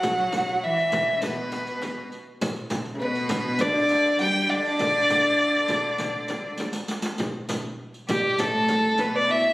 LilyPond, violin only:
\new Staff \with { instrumentName = "Violin" } { \time 4/4 \tempo 4 = 101 fis''4 e''4 b'4. r8 | r4 b'4 d''4 g''8 d''8~ | d''2. r4 | r4. g'8 a'4 b'16 d''16 e''8 | }